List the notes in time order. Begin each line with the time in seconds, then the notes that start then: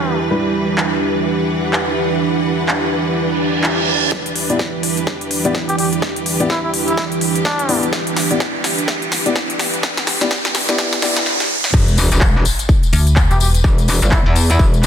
Already playing: E3 G3 D4 E4 G4 B4
0.31 G3 D4 E4 B4
0.78 clap
1.14 F#5
1.73 clap
2.68 clap
3.17 reverse cymbal
3.64 clap
4.12 E3 D4 G4, kick, snare, riser
4.26 closed hi-hat
4.36 open hi-hat
4.50 B3 E4 G4 D5, closed hi-hat
4.59 G4, kick, snare
4.83 open hi-hat
4.97 closed hi-hat
5.07 kick, snare
5.21 closed hi-hat
5.31 open hi-hat
5.45 B3 E4 G4 D5, closed hi-hat
5.55 kick, snare
5.69 G4, closed hi-hat
5.78 G4, open hi-hat
5.93 closed hi-hat
6.02 kick, snare
6.16 closed hi-hat
6.26 open hi-hat
6.40 B3 E4 G4 D5, closed hi-hat
6.50 E4, kick, snare
6.64 E4
6.74 open hi-hat
6.88 E4, closed hi-hat
6.97 kick, snare
7.12 closed hi-hat
7.21 open hi-hat
7.36 closed hi-hat
7.45 D4, kick, snare
7.59 closed hi-hat
7.69 B3 E4 G4 D5, open hi-hat
7.83 closed hi-hat
7.93 kick, snare
8.07 closed hi-hat
8.17 snare, open hi-hat
8.31 B3 E4 G4 D5, closed hi-hat
8.40 kick, snare
8.64 snare, open hi-hat
8.78 closed hi-hat
8.88 kick, snare
9.02 closed hi-hat
9.12 snare, open hi-hat
9.26 B3 E4 G4 D5, closed hi-hat
9.36 kick, snare
9.50 closed hi-hat
9.59 snare, open hi-hat
9.74 closed hi-hat
9.83 kick, snare
9.97 snare, closed hi-hat
10.07 snare, open hi-hat
10.21 B3 E4 G4 D5, snare, closed hi-hat
10.31 kick, snare
10.45 snare
10.55 snare, open hi-hat
10.69 B3 E4 G4 D5, snare, closed hi-hat
10.78 G4 D5, kick, snare
10.93 snare, closed hi-hat
11.02 B3 E4 G4 D5, kick, snare, open hi-hat
11.16 snare
11.26 snare
11.40 snare
11.64 snare
11.74 E1, kick, crash, tambourine, sub drop
11.88 closed hi-hat, tambourine
11.97 open hi-hat, tambourine
12.12 E1, closed hi-hat, tambourine
12.21 kick, clap, tambourine
12.45 open hi-hat, tambourine
12.59 closed hi-hat, tambourine
12.69 kick, tambourine
12.83 closed hi-hat, tambourine
12.93 D2, open hi-hat, tambourine
13.00 B4
13.07 closed hi-hat, tambourine
13.16 kick, clap, tambourine
13.31 E1 G4, closed hi-hat, tambourine
13.40 G4, open hi-hat, tambourine
13.55 closed hi-hat, tambourine
13.64 E1, kick
13.78 closed hi-hat, tambourine
13.88 open hi-hat, tambourine
14.02 G1, closed hi-hat, tambourine
14.11 E4, kick, clap, tambourine
14.26 E2 E4
14.36 open hi-hat, tambourine
14.50 E4, closed hi-hat, tambourine
14.59 E1, kick, tambourine
14.74 closed hi-hat, tambourine
14.83 clap, open hi-hat